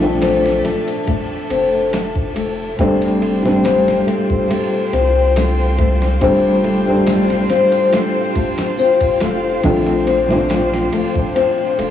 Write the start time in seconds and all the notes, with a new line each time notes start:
Already playing: A#1 A3 C4 D4 A4
0.00 F3 A3 C4 D4
0.22 C4, snare, ride
0.46 snare
0.64 A3, snare, ride
0.88 ride
1.07 A3, kick, ride
1.50 F1 C4, ride
1.93 A3, snare, ride
2.16 kick
2.36 F1 A3, ride
2.79 F1 G3 A3 C4 D4 F4 C5, kick, ride
3.02 ride
3.21 A3, ride
3.43 G3 A3 C4 D4, snare
3.64 C4, snare, ride, tambourine
3.88 snare
4.07 A3, ride
4.30 kick
4.49 A3, ride
4.93 C2 C4, ride
5.36 A3, snare, ride, tambourine
5.78 A3, kick, ride
6.02 snare
6.21 F1 G3 A3 C4 D4, kick, ride
6.64 A3, ride
6.86 G3 A3 C4 D4
7.06 A3, snare, ride, tambourine
7.30 snare
7.50 C4, snare, ride
7.72 ride
7.93 A3, snare, ride
8.35 A3, kick, ride
8.58 snare, ride
8.78 C4, tambourine
9.00 kick, ride
9.20 F1 A3, snare, ride
9.63 A#1 F3 A3 C4 D4, kick, ride
9.86 ride
10.07 C4, ride
10.28 F3 A3 C4, snare
10.32 D4
10.49 A3, snare, ride, tambourine
10.73 snare
10.93 A3, ride
11.15 kick
11.35 C4, ride
11.78 F1 A3, ride